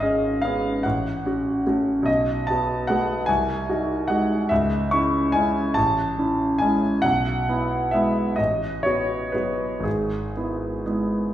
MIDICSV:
0, 0, Header, 1, 2, 480
1, 0, Start_track
1, 0, Key_signature, 4, "major"
1, 0, Tempo, 816327
1, 1222, Time_signature, 6, 3, 24, 8
1, 2649, Tempo, 841515
1, 4089, Tempo, 909091
1, 5049, Tempo, 996678
1, 6249, End_track
2, 0, Start_track
2, 0, Title_t, "Grand piano"
2, 0, Program_c, 0, 0
2, 0, Control_c, 0, 64, 127
2, 0, Note_on_c, 0, 32, 41
2, 0, Note_on_c, 0, 77, 64
2, 1, Note_on_c, 0, 75, 66
2, 14, Note_on_c, 0, 61, 35
2, 15, Note_on_c, 0, 68, 36
2, 234, Note_off_c, 0, 61, 0
2, 234, Note_off_c, 0, 68, 0
2, 244, Note_off_c, 0, 77, 0
2, 244, Note_on_c, 0, 77, 67
2, 251, Note_off_c, 0, 75, 0
2, 257, Note_on_c, 0, 59, 34
2, 261, Note_on_c, 0, 61, 35
2, 264, Note_on_c, 0, 68, 36
2, 474, Note_off_c, 0, 59, 0
2, 476, Note_off_c, 0, 61, 0
2, 477, Note_off_c, 0, 68, 0
2, 489, Note_on_c, 0, 78, 55
2, 491, Note_off_c, 0, 77, 0
2, 503, Note_on_c, 0, 33, 45
2, 506, Control_c, 0, 64, 0
2, 508, Note_off_c, 0, 32, 0
2, 614, Control_c, 0, 64, 127
2, 732, Note_off_c, 0, 33, 0
2, 742, Note_on_c, 0, 61, 36
2, 745, Note_on_c, 0, 66, 38
2, 957, Note_off_c, 0, 61, 0
2, 958, Note_off_c, 0, 66, 0
2, 974, Note_off_c, 0, 78, 0
2, 979, Note_on_c, 0, 57, 35
2, 983, Note_on_c, 0, 61, 34
2, 985, Note_on_c, 0, 66, 34
2, 1191, Note_on_c, 0, 35, 43
2, 1199, Note_off_c, 0, 57, 0
2, 1201, Note_off_c, 0, 61, 0
2, 1202, Note_off_c, 0, 66, 0
2, 1209, Note_on_c, 0, 75, 68
2, 1231, Control_c, 0, 64, 0
2, 1315, Control_c, 0, 64, 127
2, 1440, Note_off_c, 0, 35, 0
2, 1451, Note_on_c, 0, 81, 72
2, 1457, Note_off_c, 0, 75, 0
2, 1470, Note_on_c, 0, 59, 35
2, 1472, Note_on_c, 0, 66, 38
2, 1678, Note_off_c, 0, 59, 0
2, 1679, Note_off_c, 0, 66, 0
2, 1690, Note_on_c, 0, 78, 63
2, 1692, Note_off_c, 0, 81, 0
2, 1704, Note_on_c, 0, 57, 39
2, 1706, Note_on_c, 0, 59, 35
2, 1710, Note_on_c, 0, 66, 36
2, 1910, Note_off_c, 0, 57, 0
2, 1911, Note_off_c, 0, 59, 0
2, 1913, Note_off_c, 0, 66, 0
2, 1918, Note_on_c, 0, 80, 71
2, 1926, Note_off_c, 0, 78, 0
2, 1932, Note_on_c, 0, 36, 44
2, 1938, Control_c, 0, 64, 0
2, 2034, Control_c, 0, 64, 127
2, 2160, Note_off_c, 0, 36, 0
2, 2173, Note_on_c, 0, 63, 38
2, 2173, Note_on_c, 0, 66, 41
2, 2386, Note_off_c, 0, 66, 0
2, 2387, Note_off_c, 0, 63, 0
2, 2397, Note_on_c, 0, 78, 64
2, 2400, Note_off_c, 0, 80, 0
2, 2407, Note_on_c, 0, 56, 36
2, 2412, Note_on_c, 0, 66, 37
2, 2413, Note_on_c, 0, 63, 36
2, 2626, Note_off_c, 0, 56, 0
2, 2628, Note_off_c, 0, 66, 0
2, 2629, Note_off_c, 0, 63, 0
2, 2640, Note_on_c, 0, 76, 67
2, 2644, Note_off_c, 0, 78, 0
2, 2654, Note_on_c, 0, 37, 47
2, 2659, Control_c, 0, 64, 0
2, 2746, Control_c, 0, 64, 127
2, 2881, Note_on_c, 0, 85, 71
2, 2883, Note_off_c, 0, 37, 0
2, 2883, Note_off_c, 0, 76, 0
2, 2894, Note_on_c, 0, 61, 40
2, 2894, Note_on_c, 0, 64, 43
2, 3108, Note_off_c, 0, 61, 0
2, 3109, Note_off_c, 0, 64, 0
2, 3116, Note_on_c, 0, 80, 74
2, 3125, Note_off_c, 0, 85, 0
2, 3127, Note_on_c, 0, 56, 35
2, 3131, Note_on_c, 0, 61, 37
2, 3133, Note_on_c, 0, 64, 41
2, 3345, Note_off_c, 0, 56, 0
2, 3347, Note_off_c, 0, 61, 0
2, 3347, Note_off_c, 0, 64, 0
2, 3355, Note_on_c, 0, 81, 79
2, 3362, Note_off_c, 0, 80, 0
2, 3370, Note_on_c, 0, 33, 50
2, 3376, Control_c, 0, 64, 0
2, 3475, Control_c, 0, 64, 127
2, 3600, Note_off_c, 0, 33, 0
2, 3610, Note_on_c, 0, 61, 37
2, 3611, Note_on_c, 0, 64, 37
2, 3824, Note_off_c, 0, 61, 0
2, 3824, Note_off_c, 0, 64, 0
2, 3835, Note_on_c, 0, 80, 71
2, 3838, Note_off_c, 0, 81, 0
2, 3851, Note_on_c, 0, 56, 32
2, 3853, Note_on_c, 0, 61, 35
2, 3855, Note_on_c, 0, 64, 35
2, 4070, Note_off_c, 0, 56, 0
2, 4070, Note_off_c, 0, 61, 0
2, 4072, Note_off_c, 0, 64, 0
2, 4082, Note_on_c, 0, 78, 82
2, 4085, Note_off_c, 0, 80, 0
2, 4094, Note_on_c, 0, 35, 50
2, 4098, Control_c, 0, 64, 0
2, 4194, Control_c, 0, 64, 127
2, 4318, Note_off_c, 0, 35, 0
2, 4331, Note_on_c, 0, 59, 34
2, 4333, Note_on_c, 0, 64, 37
2, 4544, Note_off_c, 0, 59, 0
2, 4544, Note_off_c, 0, 64, 0
2, 4556, Note_on_c, 0, 76, 56
2, 4557, Note_off_c, 0, 78, 0
2, 4569, Note_on_c, 0, 56, 33
2, 4570, Note_on_c, 0, 59, 36
2, 4575, Note_on_c, 0, 64, 36
2, 4785, Note_off_c, 0, 56, 0
2, 4785, Note_off_c, 0, 59, 0
2, 4788, Note_off_c, 0, 64, 0
2, 4791, Note_on_c, 0, 75, 63
2, 4799, Note_off_c, 0, 76, 0
2, 4804, Note_on_c, 0, 33, 44
2, 4812, Control_c, 0, 64, 0
2, 4921, Control_c, 0, 64, 127
2, 5039, Note_on_c, 0, 73, 60
2, 5043, Note_off_c, 0, 33, 0
2, 5044, Note_off_c, 0, 75, 0
2, 5052, Note_on_c, 0, 59, 33
2, 5055, Note_on_c, 0, 66, 33
2, 5268, Note_off_c, 0, 59, 0
2, 5270, Note_off_c, 0, 66, 0
2, 5277, Note_on_c, 0, 71, 54
2, 5282, Note_off_c, 0, 73, 0
2, 5286, Note_on_c, 0, 54, 30
2, 5291, Note_on_c, 0, 59, 30
2, 5292, Note_on_c, 0, 66, 30
2, 5507, Note_on_c, 0, 32, 43
2, 5515, Note_off_c, 0, 54, 0
2, 5517, Note_off_c, 0, 59, 0
2, 5518, Note_off_c, 0, 66, 0
2, 5524, Note_on_c, 0, 68, 48
2, 5530, Note_off_c, 0, 71, 0
2, 5543, Control_c, 0, 64, 0
2, 5641, Control_c, 0, 64, 127
2, 5759, Note_off_c, 0, 32, 0
2, 5780, Note_on_c, 0, 59, 30
2, 5783, Note_on_c, 0, 64, 33
2, 5998, Note_off_c, 0, 59, 0
2, 5999, Note_off_c, 0, 64, 0
2, 6018, Note_on_c, 0, 56, 29
2, 6018, Note_on_c, 0, 59, 32
2, 6022, Note_on_c, 0, 64, 34
2, 6230, Note_off_c, 0, 56, 0
2, 6230, Note_off_c, 0, 59, 0
2, 6232, Note_off_c, 0, 64, 0
2, 6244, Note_off_c, 0, 68, 0
2, 6249, End_track
0, 0, End_of_file